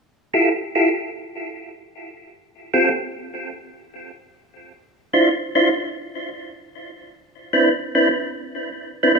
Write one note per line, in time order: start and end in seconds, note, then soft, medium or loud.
0.34 0.49 E4 medium
0.34 0.49 F4 medium
0.34 0.49 G4 medium
0.34 0.49 A4 medium
0.75 0.89 E4 medium
0.75 0.89 F4 medium
0.75 0.89 G4 medium
0.75 0.89 A4 medium
2.74 2.89 C4 medium
2.74 2.89 F4 medium
2.74 2.89 G4 medium
2.74 2.89 A4 medium
5.13 5.29 D4 medium
5.13 5.29 E4 medium
5.13 5.29 F4 medium
5.13 5.29 C5 medium
5.55 5.69 D4 medium
5.55 5.69 E4 medium
5.55 5.69 F4 medium
5.55 5.69 C5 medium
7.53 7.69 C4 medium
7.53 7.69 D4 medium
7.53 7.69 E4 medium
7.53 7.69 B4 medium
7.95 8.09 C4 medium
7.95 8.09 D4 medium
7.95 8.09 E4 medium
7.95 8.09 B4 loud
9.03 9.12 C4 medium
9.03 9.12 D4 medium
9.03 9.12 E4 medium
9.03 9.12 B4 loud
9.15 9.19 C4 medium
9.15 9.19 D4 medium
9.15 9.19 E4 medium
9.15 9.19 B4 medium